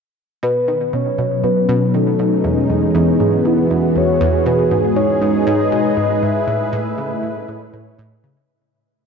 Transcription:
0.43 synth arpeggio sound B2, analog synth pad B2, soft synth lead B4
0.60 analog synth pad C#4
0.68 synth arpeggio sound D#3
0.76 analog synth pad F#3
0.93 synth arpeggio sound B2, soft synth lead C#5
1.18 synth arpeggio sound B2
1.34 analog synth pad D#4
1.44 synth arpeggio sound B2, soft synth lead B4
1.69 synth arpeggio sound B2
1.94 synth arpeggio sound D#3, soft synth lead A4
2.19 synth arpeggio sound B2
2.44 synth arpeggio sound E2, analog synth pad E3, soft synth lead G#4
2.49 analog synth pad B3
2.70 synth arpeggio sound E2
2.95 synth arpeggio sound E2
3.20 synth arpeggio sound G#2, soft synth lead G#4
3.35 analog synth pad F#4 G#4
3.45 synth arpeggio sound E2, soft synth lead E4
3.71 synth arpeggio sound E2
3.96 synth arpeggio sound E2, soft synth lead C#5
4.21 synth arpeggio sound E2
4.46 synth arpeggio sound B2, analog synth pad G#3, soft synth lead B4
4.70 synth arpeggio sound G#2, analog synth pad D#4
4.96 synth arpeggio sound G#2, analog synth pad B4, soft synth lead C#5
5.22 synth arpeggio sound G#2
5.47 synth arpeggio sound G#2, soft synth lead D#5
5.72 synth arpeggio sound B2
5.97 synth arpeggio sound G#2
6.23 synth arpeggio sound G#2, soft synth lead E5
6.48 synth arpeggio sound A2, analog synth pad A3
6.73 synth arpeggio sound A2
6.85 analog synth pad E4
6.98 synth arpeggio sound C#3
7.23 synth arpeggio sound A2
7.38 analog synth pad C#5
7.48 synth arpeggio sound A2
7.73 synth arpeggio sound A2
7.99 synth arpeggio sound A2
8.24 synth arpeggio sound C#3

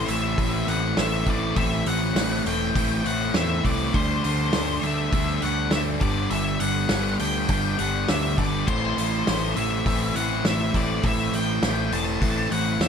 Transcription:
Already playing: overdriven electric guitar A3
0.08 picked electric bass A1, distorted electric guitar A2 E3 A3 C4 E4, lead electric guitar E5, open hi-hat
0.37 picked electric bass A1, distorted electric guitar A2 E3 A3 C4 E4, kick, open hi-hat
0.67 picked electric bass A1, distorted electric guitar A2 E3 A3 C4 E4, lead electric guitar F#5, open hi-hat
0.97 picked electric bass A1, distorted electric guitar A2 E3 A3 C4 E4, lead electric guitar E5, snare, open hi-hat
1.26 picked electric bass A1, distorted electric guitar A2 E3 A3 C4 E4, lead electric guitar D5, kick, open hi-hat
1.56 picked electric bass A1, distorted electric guitar A2 E3 A3 C4 E4, lead electric guitar E5, kick, open hi-hat
1.85 picked electric bass A1, distorted electric guitar A2 E3 A3 C4 E4, lead electric guitar F#5, open hi-hat
2.15 picked electric bass A1, distorted electric guitar A2 E3 A3 C4 E4, snare, open hi-hat
2.45 picked electric bass E1, distorted electric guitar A2 E3 A3 C4 E4, lead electric guitar G5, open hi-hat
2.75 picked electric bass A1, distorted electric guitar A2 E3 A3 C4 E4, kick, open hi-hat
3.04 picked electric bass A1, distorted electric guitar A2 E3 A3 C4 E4, lead electric guitar F#5, open hi-hat
3.34 picked electric bass E2, distorted electric guitar A2 E3 A3 C4 E4, lead electric guitar E5, snare, open hi-hat
3.63 picked electric bass C2, distorted electric guitar A2 E3 A3 C4 E4, lead electric guitar D5, kick, open hi-hat
3.93 picked electric bass D2, distorted electric guitar D3 G3 A3 D4, lead electric guitar C5, kick, open hi-hat
4.22 picked electric bass D2, distorted electric guitar D3 G3 A3 D4, lead electric guitar C5, open hi-hat
4.53 picked electric bass D2, distorted electric guitar D3 G3 A3 D4, snare, open hi-hat
4.82 picked electric bass D2, distorted electric guitar D3 G3 A3 D4, lead electric guitar E5, open hi-hat
5.11 picked electric bass D2, distorted electric guitar D3 G3 A3 D4, kick, open hi-hat
5.41 picked electric bass D2, distorted electric guitar D3 G3 A3 D4, lead electric guitar F#5, open hi-hat
5.70 picked electric bass D2, distorted electric guitar D3 G3 A3 D4, lead electric guitar E5, snare, open hi-hat
6.00 picked electric bass G1, distorted electric guitar G2 D3 G3 B3 D4, lead electric guitar D5, kick, open hi-hat
6.30 picked electric bass G1, distorted electric guitar G2 D3 G3 B3 D4, lead electric guitar E5, open hi-hat
6.60 picked electric bass G1, distorted electric guitar G2 D3 G3 B3 D4, lead electric guitar F#5, open hi-hat
6.89 picked electric bass G1, distorted electric guitar G2 D3 G3 B3 D4, snare, open hi-hat
7.18 picked electric bass D2, distorted electric guitar G2 D3 G3 B3 D4, lead electric guitar G5, open hi-hat
7.48 picked electric bass G1, distorted electric guitar G2 D3 G3 B3 D4, kick, open hi-hat
7.78 picked electric bass G1, distorted electric guitar G2 D3 G3 B3 D4, lead electric guitar F#5, open hi-hat
8.08 picked electric bass D2, distorted electric guitar G2 D3 G3 B3 D4, lead electric guitar E5, snare, open hi-hat
8.38 picked electric bass G1, distorted electric guitar G2 D3 G3 B3 D4, lead electric guitar D5, kick, open hi-hat
8.67 picked electric bass A1, distorted electric guitar A2 E3 A3 C4 E4, lead electric guitar C5, kick, crash
8.97 picked electric bass A1, distorted electric guitar A2 E3 A3 C4 E4, lead electric guitar C5, open hi-hat
9.27 picked electric bass A1, distorted electric guitar A2 E3 A3 C4 E4, snare, open hi-hat
9.56 picked electric bass A1, distorted electric guitar A2 E3 A3 C4 E4, lead electric guitar E5, open hi-hat
9.85 picked electric bass A1, distorted electric guitar A2 E3 A3 C4 E4, kick, open hi-hat
10.15 picked electric bass A1, distorted electric guitar A2 E3 A3 C4 E4, lead electric guitar F#5, open hi-hat
10.44 picked electric bass A1, distorted electric guitar A2 E3 A3 C4 E4, lead electric guitar E5, snare, open hi-hat
10.73 picked electric bass A1, distorted electric guitar A2 E3 A3 C4 E4, lead electric guitar D5, kick, open hi-hat
11.03 picked electric bass A1, distorted electric guitar A2 E3 A3 C4 E4, lead electric guitar E5, kick, open hi-hat
11.32 picked electric bass A1, distorted electric guitar A2 E3 A3 C4 E4, lead electric guitar G5, open hi-hat
11.62 picked electric bass A1, distorted electric guitar A2 E3 A3 C4 E4, snare, open hi-hat
11.91 picked electric bass E1, distorted electric guitar A2 E3 A3 C4 E4, lead electric guitar A5, open hi-hat
12.20 picked electric bass A1, distorted electric guitar A2 E3 A3 C4 E4, kick, open hi-hat
12.50 picked electric bass A1, distorted electric guitar A2 E3 A3 C4 E4, lead electric guitar F#5, open hi-hat
12.79 picked electric bass E2, distorted electric guitar A2 E3 A3 C4 E4, lead electric guitar E5, snare, open hi-hat

